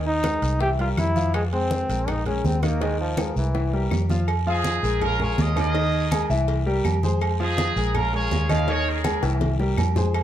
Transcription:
Already playing: fingered electric bass D#2, grand piano D#3 D#4 D#5
0.06 trombone D#4, high conga
0.23 grand piano G#3 G#4 A#4, high bongo, high conga, high timbale, short guiro, claves
0.42 fingered electric bass C2, high bongo, high conga, high timbale, short guiro
0.61 grand piano E3 E4 E5, trombone G4, high bongo, high conga, long guiro
0.79 grand piano G3 G4 A#4, trombone F4, high bongo, high conga, high timbale
0.97 fingered electric bass F2, trombone E4, high bongo, low bongo, high conga, high timbale, short guiro, claves
1.15 grand piano F3 F4 F5, high bongo, high conga, short guiro
1.34 trombone G#3, high bongo, high conga, high timbale, long guiro, claves
1.52 grand piano G#3 G#4 C5, trombone C4, high conga, high timbale
1.71 high bongo, high conga, short guiro
1.89 fingered electric bass A#1, grand piano G#3 G#4 A#4, high bongo, high conga, high timbale, short guiro
2.08 trombone D#4, high bongo, high conga, low conga, high timbale, long guiro, claves
2.26 grand piano G#3 G#4 A#4, trombone C#4, high bongo, high conga, low conga, high timbale
2.44 fingered electric bass D#2, trombone C4, high bongo, low bongo, high conga, low timbale, short guiro
2.63 grand piano D#3 D#4 D#5, trombone A#3, high bongo, high conga, high timbale, short guiro, claves
2.81 grand piano D#3 D#4 D#5, trombone G#3, high bongo, high timbale, long guiro
3.00 trombone F3, high conga
3.17 grand piano G#3 G#4 A#4, high bongo, high conga, high timbale, short guiro, claves
3.36 fingered electric bass C2, trombone E3, high bongo, high conga, short guiro
3.54 grand piano E3 E4 E5, high bongo, high conga, high timbale, long guiro
3.73 grand piano G3 G4 A#4, high bongo, high conga
3.91 fingered electric bass F2, high bongo, low bongo, high conga, low timbale, short guiro, claves
4.09 grand piano F3 F4 F5, high bongo, high conga, low timbale, short guiro
4.28 cowbell, high conga, low agogo, long guiro, claves
4.46 grand piano F3 F4 F5, trumpet section C4 D#4 G#4, high conga
4.64 cowbell, high conga, low timbale, low agogo, short guiro
4.83 fingered electric bass A#1, grand piano G#3 G#4 A#4, high conga, short guiro
5.01 trumpet section C#4 F4 A#4, cowbell, high conga, low conga, low agogo, long guiro, claves
5.20 grand piano G#3 G#4 A#4, trumpet section C#5, high conga, low conga
5.38 fingered electric bass D#2, trumpet section D#5, cowbell, high conga, low timbale, low agogo, short guiro
5.56 grand piano D#3 D#4 D#5, trumpet section G#4 A#4 D#5, cowbell, high conga, low agogo, short guiro, claves
5.74 grand piano D#3 D#4 D#5, cowbell, high conga, low agogo, long guiro
5.93 high conga, low agogo
6.11 grand piano G#3 G#4 A#4, cowbell, high conga, low timbale, low agogo, short guiro, claves
6.30 fingered electric bass C2, grand piano E3 E4 E5, high conga, short guiro
6.48 cowbell, high conga, low agogo, long guiro
6.66 grand piano G3 G4 A#4, high conga
6.85 fingered electric bass F2, cowbell, high conga, low timbale, low agogo, short guiro, claves
7.03 grand piano G#3 G#4 C5, high conga, short guiro
7.21 cowbell, high conga, low agogo, long guiro, claves
7.40 grand piano F3 F4 F5, trumpet section C4 D#4 G#4, high conga
7.58 cowbell, high conga, low timbale, low agogo, short guiro
7.76 fingered electric bass A#1, grand piano G#3 G#4 A#4, high conga, short guiro
7.95 trumpet section C#4 F4 A#4, cowbell, high conga, low conga, low agogo, long guiro, claves
8.13 grand piano G#3 G#4 A#4, trumpet section F4 G#4 C#5, high conga
8.31 fingered electric bass D#2, cowbell, high conga, low timbale, low agogo, short guiro
8.49 grand piano D#3 D#4 D#5, trumpet section F5, cowbell, high conga, low agogo, short guiro, claves
8.68 grand piano D#3 D#4 D#5, trumpet section G#4 A#4 C#5, cowbell, high conga, low agogo, long guiro
8.86 trumpet section C#4 G#4, high conga, low agogo
9.04 grand piano G#3 G#4 A#4, cowbell, high bongo, high conga, low timbale, low agogo, short guiro, claves
9.23 fingered electric bass C2, grand piano E3 E4 E5, high bongo, high conga, short guiro
9.41 cowbell, low bongo, high conga, low agogo, long guiro
9.59 grand piano G3 G4 A#4, low bongo
9.77 fingered electric bass F2, cowbell, low bongo, low conga, low timbale, low agogo, short guiro, claves
9.96 grand piano G#3 G#4 C5, low bongo, low conga, short guiro
10.14 cowbell, high conga, low agogo, long guiro, claves

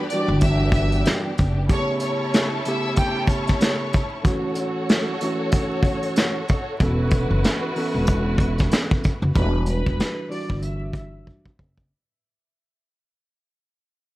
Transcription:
Already playing: string section B3 D4 G4
0.09 tine electric piano E3 G3, violin section D5 D6, closed hi-hat
0.14 tine electric piano D4 F#4
0.28 upright bass G1
0.41 violin section E5 E6, kick, closed hi-hat
0.72 violin section E5 E6, kick, closed hi-hat
0.92 closed hi-hat
1.05 snare, closed hi-hat
1.38 upright bass F#1, kick, closed hi-hat
1.68 tine electric piano C#3 A3 B3 G4, string section C#4 E4 A4, violin section C#5 C#6, kick, closed hi-hat
2.00 violin section C#5 C#6, closed hi-hat
2.34 snare, closed hi-hat
2.65 tine electric piano C#3 A3 B3 G4, violin section E5 E6, closed hi-hat
2.96 violin section G4 G5, kick, closed hi-hat
3.27 violin section C#5 C#6, kick, closed hi-hat
3.47 kick, snare, closed hi-hat
3.61 snare, closed hi-hat
3.93 kick, closed hi-hat
4.23 tine electric piano E3 A3 C#4 F#4, string section F#4 A4 C#5, kick, closed hi-hat
4.55 closed hi-hat
4.89 snare, closed hi-hat
5.21 tine electric piano E3 A3 C#4 F#4, closed hi-hat
5.52 kick, closed hi-hat
5.83 kick, closed hi-hat
6.03 closed hi-hat
6.16 snare, closed hi-hat
6.48 kick, closed hi-hat
6.80 upright bass E1, tine electric piano E3 B3 C#4 A4, string section E4 F#4 B4, kick, closed hi-hat
7.11 kick, closed hi-hat
7.31 upright bass F#1
7.44 snare, closed hi-hat
7.76 tine electric piano E3 B3 C#4 A4, open hi-hat
7.94 upright bass E1
8.07 kick, closed hi-hat
8.38 kick, closed hi-hat
8.58 kick, snare, closed hi-hat
8.71 snare, closed hi-hat
8.91 kick
9.04 kick, closed hi-hat
9.22 upright bass F#1
9.35 upright bass E1, tine electric piano E3 G3 D4 F#4, violin section B4 B5, kick, closed hi-hat
9.66 violin section B4 B5, closed hi-hat
9.86 upright bass E1, kick
10.00 snare, closed hi-hat
10.28 tine electric piano E3 G3 D4 F#4, violin section D5 D6, open hi-hat
10.50 upright bass G1, kick
10.62 violin section E5 E6, closed hi-hat
10.93 violin section E5 E6, kick, closed hi-hat
11.27 kick
11.46 kick
11.59 upright bass F#1, kick
11.78 kick

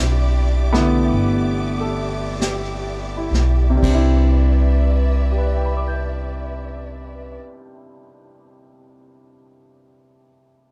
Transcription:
Already playing: upright bass B1, upright piano E3 G3 C4 D4 E4 B4, string section G4 D5 E5 D6
0.72 upright piano D3 E3 A3 B3 E4, snare
1.12 upright bass G1, brush sweep
1.80 upright piano A4
2.40 upright piano G4, snare, hi-hat pedal
3.17 upright piano E4
3.31 upright bass B1, snare
3.70 upright piano C3
3.76 upright piano G3
3.82 upright bass C2, upright piano C4, string section B4 D5 E5, kick, crash
3.88 upright piano D4
3.94 upright piano E4
5.31 upright piano G4
5.38 upright piano B4
5.46 upright piano D5
5.56 upright piano G5
5.65 upright piano B5
5.77 upright piano D6
5.88 upright piano G6

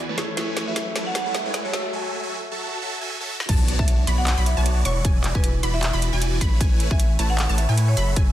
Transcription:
Already playing: felt piano E3 B3 G#4 D5, riser
0.09 sub bass A1, supersaw synth A3 E4 B4 C#5 A5
0.17 felt piano A3 E4 G#4 C#5, snare, closed hi-hat
0.35 sub bass A1, felt piano A3 E4 G#4 C#5, supersaw synth A3 E4 B4 C#5 G#5, snare, closed hi-hat
0.57 snare, closed hi-hat
0.67 sub bass A1, supersaw synth A3 E4 B4 C#5 G#5, marimba E5
0.76 snare, closed hi-hat
0.96 sub bass A1, supersaw synth A3 E4 B4 C#5 A5, snare, closed hi-hat
1.06 marimba F#5
1.15 marimba F#5, snare, closed hi-hat
1.26 sub bass A1, supersaw synth A3 E4 B4 C#5 A5
1.34 marimba E5, snare, closed hi-hat
1.45 sub bass A2, supersaw synth A3 E4 B4 C#5 G#5
1.54 snare, closed hi-hat
1.65 sub bass F#1, supersaw synth F#3 F#4 A4 E5 A5, marimba C#5
1.73 felt piano F#3 F#4 A4 E5, snare, closed hi-hat
1.93 supersaw synth F#3 F#4 A4 E5 G#5
2.23 supersaw synth F#3 F#4 A4 E5 G#5
2.51 supersaw synth F#3 F#4 A4 E5 A5
2.82 supersaw synth F#3 F#4 A4 E5 A5
3.01 supersaw synth F#3 F#4 A4 E5 G#5
3.10 high tom
3.21 supersaw synth F#3 F#4 A4 E5 A5, high tom
3.40 snare
3.49 sub bass B1, supersaw synth B3 F#4 C#5 D5 A5, synth pluck A5, kick, closed hi-hat, crash, impact
3.68 closed hi-hat
3.79 sub bass B1, supersaw synth B3 F#4 C#5 D5 A5, marimba E5, synth pluck A5, kick
3.88 closed hi-hat
4.07 sub bass B1, supersaw synth B3 F#4 C#5 D5 B5, synth pluck B5, closed hi-hat
4.18 marimba F#5
4.27 marimba F#5, clap, closed hi-hat
4.37 sub bass B1, supersaw synth B3 F#4 C#5 D5 B5, synth pluck B5
4.46 marimba E5, closed hi-hat
4.57 sub bass B1, supersaw synth B3 F#4 C#5 D5 A5, synth pluck A5
4.66 closed hi-hat
4.85 sub bass E1, supersaw synth E3 E4 F#4 D5 C#6, marimba C#5, synth pluck C#6, closed hi-hat
5.04 sub bass E1, supersaw synth E3 E4 F#4 D5 G#5, synth pluck G#5, kick, closed hi-hat
5.24 clap, closed hi-hat
5.35 sub bass E1, supersaw synth E3 E4 F#4 D5 G#5, marimba B4, synth pluck G#5, kick
5.44 marimba B4, closed hi-hat
5.63 sub bass E1, supersaw synth E3 E4 F#4 D5 B5, synth pluck B5, closed hi-hat
5.74 marimba E5
5.83 clap, closed hi-hat
5.93 sub bass E1, supersaw synth E3 E4 F#4 D5 B5, synth pluck B5
6.02 closed hi-hat
6.13 sub bass E1, supersaw synth E3 E4 F#4 D5 G#5, synth pluck G#5
6.22 closed hi-hat
6.41 sub bass A1, supersaw synth A3 E4 B4 C#5 B5, synth pluck B5, kick, closed hi-hat
6.61 sub bass A1, supersaw synth A3 E4 B4 C#5 G#5, synth pluck G#5, kick, closed hi-hat
6.80 closed hi-hat
6.91 sub bass A1, supersaw synth A3 E4 B4 C#5 G#5, marimba E5, synth pluck G#5, kick
7.00 closed hi-hat
7.19 sub bass A1, supersaw synth A3 E4 B4 C#5 A5, synth pluck A5, closed hi-hat
7.30 marimba F#5
7.39 clap, closed hi-hat
7.49 sub bass A1, supersaw synth A3 E4 B4 C#5 A5, synth pluck A5
7.58 marimba E5, closed hi-hat
7.69 sub bass A2, supersaw synth A3 E4 B4 C#5 G#5, synth pluck G#5
7.78 closed hi-hat
7.88 marimba C#5
7.97 sub bass F#1, supersaw synth F#3 F#4 A4 E5 B5, synth pluck B5, closed hi-hat
8.16 sub bass F#1, supersaw synth F#3 F#4 A4 E5 G#5, synth pluck G#5, kick, closed hi-hat

